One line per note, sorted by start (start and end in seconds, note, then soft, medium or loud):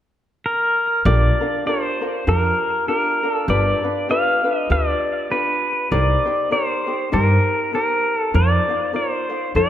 0.46 1.06 A#4 medium
1.05 1.28 A#1 loud
1.05 1.41 D4 medium
1.05 1.41 F4 medium
1.05 1.41 G4 medium
1.05 1.39 A#4 medium
1.05 1.67 D5 medium
1.41 1.66 D4 soft
1.41 1.66 F4 soft
1.41 1.66 A#4 soft
1.66 2.02 D4 medium
1.66 2.01 F4 medium
1.66 2.02 G4 medium
1.66 2.00 A#4 medium
1.66 2.29 C5 medium
2.01 2.26 D4 soft
2.01 2.26 F4 soft
2.01 2.27 A#4 soft
2.27 2.50 F2 medium
2.27 2.88 D4 medium
2.27 2.89 F4 medium
2.27 2.87 G4 medium
2.27 2.88 A#4 medium
2.27 2.87 A#4 medium
2.88 3.23 D4 soft
2.88 3.23 F4 medium
2.88 3.23 G4 soft
2.88 3.33 A#4 medium
2.88 3.22 A#4 medium
3.23 3.47 D4 soft
3.23 3.48 F4 soft
3.23 3.48 A#4 medium
3.33 3.51 A4 medium
3.48 3.71 G1 medium
3.48 3.84 D4 medium
3.48 3.83 F4 medium
3.48 3.84 G4 medium
3.48 3.82 B4 medium
3.48 4.10 D5 medium
3.84 4.08 D4 soft
3.84 4.09 F4 soft
3.84 4.09 B4 soft
4.09 4.45 D4 medium
4.09 4.44 F4 medium
4.09 4.44 G4 medium
4.09 4.43 B4 medium
4.09 4.58 F5 medium
4.44 4.69 D4 soft
4.44 4.69 F4 soft
4.44 4.70 B4 soft
4.58 4.71 D#5 medium
4.70 4.93 D2 medium
4.70 5.30 D4 medium
4.70 5.31 F4 medium
4.70 5.30 G4 medium
4.70 5.31 B4 medium
4.70 5.33 D5 medium
5.31 5.91 D4 medium
5.31 5.92 F4 medium
5.31 5.91 G4 medium
5.31 5.94 B4 medium
5.31 5.92 B4 medium
5.91 6.14 C2 medium
5.91 6.26 D#4 medium
5.91 6.25 G4 medium
5.91 6.27 A#4 medium
5.91 6.24 C5 medium
5.91 6.52 D5 medium
6.25 6.50 D#4 soft
6.25 6.51 G4 soft
6.25 6.51 C5 medium
6.51 6.87 D#4 medium
6.51 6.86 G4 medium
6.51 6.87 A#4 medium
6.51 7.09 C5 medium
6.51 6.85 C5 medium
6.86 7.11 D#4 soft
6.86 7.11 G4 soft
6.86 7.12 C5 medium
7.12 7.36 G2 medium
7.12 7.73 D#4 medium
7.12 7.73 G4 medium
7.12 7.72 A#4 medium
7.12 7.74 A#4 medium
7.12 7.74 C5 medium
7.73 8.34 D#4 soft
7.73 8.34 G4 medium
7.73 8.33 A#4 soft
7.73 8.19 A#4 medium
7.73 8.34 C5 medium
8.19 8.37 A4 medium
8.34 8.57 F2 loud
8.34 8.69 D#4 medium
8.34 8.69 F4 medium
8.34 8.69 A#4 medium
8.34 8.68 C5 medium
8.34 8.91 D5 medium
8.69 8.93 D#4 soft
8.69 8.93 F4 soft
8.69 8.94 C5 soft
8.93 9.30 D#4 soft
8.93 9.29 F4 medium
8.93 9.29 A#4 medium
8.93 9.28 C5 medium
8.93 9.56 C5 medium
9.29 9.55 D#4 soft
9.29 9.55 F4 soft
9.29 9.55 C5 medium
9.55 9.69 F2 medium
9.55 9.69 D#4 medium
9.55 9.69 F4 medium
9.55 9.69 A4 medium
9.55 9.69 C5 medium
9.55 9.69 D#5 medium